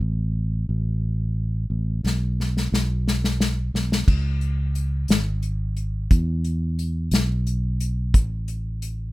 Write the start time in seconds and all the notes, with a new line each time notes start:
0.01 A1
0.69 A1
1.70 A1
2.04 B1, snare
2.40 snare
2.57 snare
2.72 B1, snare
3.08 snare
3.24 snare
3.40 snare
3.74 B1, snare
3.92 snare
4.07 C#2, kick, crash
4.41 closed hi-hat
4.75 closed hi-hat
5.08 G#1, snare, closed hi-hat
5.42 closed hi-hat
5.77 closed hi-hat
6.11 E2, kick, closed hi-hat
6.44 closed hi-hat
6.79 closed hi-hat
7.11 B1, snare, closed hi-hat
7.47 closed hi-hat
7.80 closed hi-hat
8.14 A1, kick, closed hi-hat
8.48 closed hi-hat
8.82 closed hi-hat